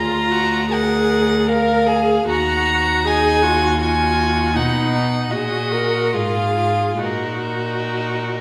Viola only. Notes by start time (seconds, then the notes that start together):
Already playing: F4
0.32 F#4
0.70 G#4
1.47 A#4
1.87 G#4
2.28 F#4
3.05 G#4
3.42 F#4
3.81 F4
4.55 D#4
4.93 D#4
5.31 F#4
5.72 A#4
6.14 G#4
7.01 F#4